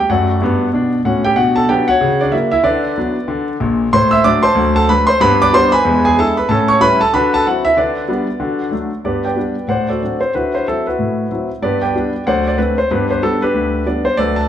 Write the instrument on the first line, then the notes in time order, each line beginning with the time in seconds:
grand piano
0.09 F#2 A3 F#4 D5 F#5
0.41 G2 B3
0.73 B2 D4
1.05 A2 C#4 F#4 F#5
1.25 G4 G5
1.36 B2 D4 F#4 F#5
1.56 A4 A5
1.69 F#3 B3 D4 G4 G5
1.88 F#4 C#5 F#5
2.01 C#3
2.21 D4 D5
2.32 F#3 A#3 E4 E5
2.51 E4 E5
2.63 D3 D4 B4 D5
2.97 F#3 B3 D4
3.28 D3
3.60 A#1 A#2
3.93 A2 C5 C6
4.11 E5 E6
4.24 F#3 A3 D4 D5 D6
4.43 C5 A5 C6
4.55 D2 F#3
4.76 A4 A5
4.89 F#3 A3 D4 B4 B5
5.07 C5 C6
5.21 G2 B3 B4 B5
5.42 D5 D6
5.53 G3 B3 D4 C5 C6
5.72 B4 G#5 B5
5.85 E2 G#3
6.05 G#4 G#5
6.18 G#3 D4 E4 A4 A5
6.37 B4 B5
6.49 A2 C#4 A4 A5
6.68 C#5 C#6
6.80 G3 C#4 E4 B4 B5
7.01 A4 A5
7.14 D3 F#4 B4 B5
7.34 A4 A5
7.47 F#3 C4 E4 F#4 F#5
7.65 E4 E5
7.77 D3 D4 B4 D5
8.08 G3 B3 D4
8.40 D3 F#4
8.71 F#3 A3 D4
9.04 G2 B3 G4 B4 D5
9.25 B4 D5 G5
9.36 G3 B3 D4
9.68 A2 C5 D5 F#5
9.88 F#4 A4 D5
10.02 F#3 C4 D4
10.21 C5
10.34 D3 E4 F#4 B4
10.55 C5
10.68 F#3 C4 E4 A4
10.87 E4 F#4 B4
10.99 A2
11.31 F#3 C4 E4
11.62 G2 B3 G4 B4 D5
11.82 B4 D5 G5
11.95 G3 B3 D4
12.26 D2 F#3 C5 D5 F#5
12.47 D5
12.58 A3 C4 D4 B4
12.78 C5
12.91 G2 B3 D4 G4 B4
13.11 C5
13.23 G3 B3 D4 A4
13.42 D4 G4 B4
13.54 D2
13.86 G3 B3 D4 D5
14.05 C5
14.17 D2 F#3 A4 B4 D5
14.36 A5